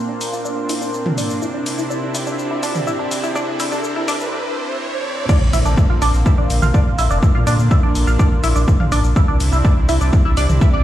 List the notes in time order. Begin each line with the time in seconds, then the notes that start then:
Already playing: A#2 A#3 C4 D4 A#4 F5 C6, riser
0.09 D4
0.21 open hi-hat, shaker
0.33 F4, shaker
0.45 D4, shaker
0.69 E4, open hi-hat, shaker
0.81 D4, shaker
0.94 shaker
1.06 F4, mid tom
1.18 D4, open hi-hat, shaker
1.30 shaker
1.42 C3 C4 E4, shaker
1.54 D4
1.64 G4, open hi-hat, shaker
1.78 E4, shaker
1.90 D4, shaker
2.11 E4 D5, open hi-hat, shaker
2.27 D4, shaker
2.39 shaker
2.51 E4
2.63 D4, open hi-hat, shaker
2.75 mid tom, shaker
2.87 E4, shaker
2.99 D4
3.11 open hi-hat, shaker
3.23 E4, shaker
3.35 D4, shaker
3.60 E4, open hi-hat, shaker
3.72 D4, shaker
3.84 shaker
3.96 E4
4.08 D4, open hi-hat, shaker
4.20 shaker
5.29 D3 A#3 C4 D4 A#4 D5, kick, crash, impact, shaker
5.41 A#1
5.53 A#1 E4 E5, open hi-hat, shaker
5.64 A#1 D4 D5 F5, shaker
5.77 kick, shaker
5.90 A#1 F4 F5
6.02 A#1 D4 D5, open hi-hat, shaker
6.14 A#1, shaker
6.26 E4 E5, kick, shaker
6.33 C6
6.38 A#1 D4 D5
6.50 A#1, open hi-hat, shaker
6.62 A#1 F4 F5, mid tom, shaker
6.74 D4 D5, kick, shaker
6.86 A#1
6.98 A#1 E4 E5, open hi-hat, shaker
7.10 F1 D4 D5, shaker
7.23 D4, kick, shaker
7.35 A#2 F4 F5
7.47 A#2 D4 D5, open hi-hat, shaker
7.59 A#2, shaker
7.71 E4 E5, kick, shaker
7.83 A#1 D4 D5
7.95 A#1, open hi-hat, shaker
8.07 A#1 F4 F5, shaker
8.19 D4 D5, kick, shaker
8.31 A#1
8.43 A#1 E4 E5, open hi-hat, shaker
8.56 A#1 D4 D5, shaker
8.68 kick, shaker
8.80 A#1 F4 F5, mid tom
8.92 A#1 D4 D5, open hi-hat, shaker
9.04 A#1, shaker
9.16 C3 C4 D4 E4 E5, kick, shaker
9.28 C2 D4 D5
9.37 C2 G4, open hi-hat, shaker
9.52 C2 E4 E5, shaker
9.65 D4 D5, kick, shaker
9.77 C2 D5
9.89 C2 E4 E5, open hi-hat, shaker
10.01 C2 D4 D5, shaker
10.13 kick, shaker
10.25 C2 E4 E5
10.37 C2 D4 D5, open hi-hat, shaker
10.49 C2, mid tom, shaker
10.61 E4 E5, kick, shaker
10.73 C2 D4 D5